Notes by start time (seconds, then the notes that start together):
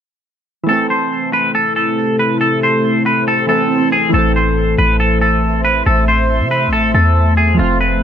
0.64 E3 A3
0.68 C3 A3 C4 E4 A4, swell
0.73 A4
0.90 C5
1.33 B4
1.55 A4
1.76 A4
2.19 B4
2.41 A4
2.63 C5
3.06 B4
3.28 A4
3.47 E3 A3 C4 A4
3.51 A4
3.92 G#4
4.09 E3 A3
4.14 A1 A3 C4 A4 C5 E5 C6
4.19 A4
4.36 C5
4.78 A1 B4
5.00 A4
5.21 A4
5.65 B4
5.86 A1 A4
6.08 C5
6.40 C3
6.51 B4
6.67 A1
6.73 A4
6.94 E2 A4
7.37 G#4
7.54 F3 A3
7.59 F1 C4 F4 F5
7.63 F4
7.81 B4